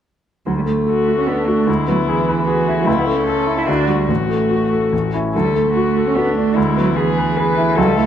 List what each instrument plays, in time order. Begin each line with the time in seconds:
0.46 grand piano D2, cello F#3
0.57 cello G3
0.65 cello A3, grand piano A3
0.87 violin F#4, grand piano A4
1.08 grand piano F#4
1.18 cello C#4
1.26 cello B3, violin D4, grand piano A4
1.48 cello A3, grand piano F#4
1.66 grand piano D2, cello G#3, violin E4
1.88 cello F#3, grand piano B3
2.07 cello E3, grand piano G#4
2.29 grand piano B4
2.47 violin F#4, grand piano G#4
2.68 grand piano E4
2.86 grand piano C#2, cello A3, violin E4
2.97 cello B3
3.06 grand piano A3, cello C#4
3.27 violin A4, grand piano A4
3.46 grand piano E4
3.58 cello E4
3.67 grand piano D2, cello D4, violin F#4
3.88 cello G3, grand piano D4 F#4
4.08 grand piano A1, cello A3, violin F#4
4.30 grand piano A3
4.51 grand piano F#4
4.72 grand piano A4
4.92 grand piano A1
5.14 grand piano C#4 E4
5.34 grand piano D2, cello F#3, violin A4
5.44 cello G3
5.54 cello A3, grand piano A3
5.73 violin F#4, grand piano F#4
5.97 grand piano A4
6.07 cello C#4
6.15 cello B3, violin D4, grand piano F#4
6.37 cello A3, grand piano D4
6.56 grand piano D2, cello G#3, violin E4
6.76 cello F#3, grand piano B3
6.96 cello E3, violin G#4, grand piano G#4
7.18 grand piano B4
7.37 grand piano G#4, violin B4
7.57 grand piano E4
7.76 grand piano C#2, cello F#3, violin A4
7.87 cello G3
7.96 cello A3, grand piano E4 A4